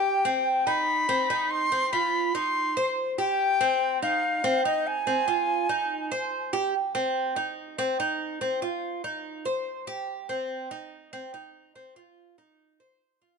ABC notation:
X:1
M:4/4
L:1/8
Q:1/4=144
K:Fdor
V:1 name="Flute"
g3 =b4 c'- | c' =b2 c'3 z g- | g3 f3 e a- | a6- a z |
[K:Cm] z8 | z8 | z8 | z8 |]
V:2 name="Cuban tres"
G C2 E2 C E2 | C F2 E2 c2 G- | G C2 E2 C E2 | C F2 E2 c2 G |
[K:Cm] z C2 E2 C E2 | C F2 E2 c2 G- | G C2 E2 C E2 | C F2 E2 c2 F |]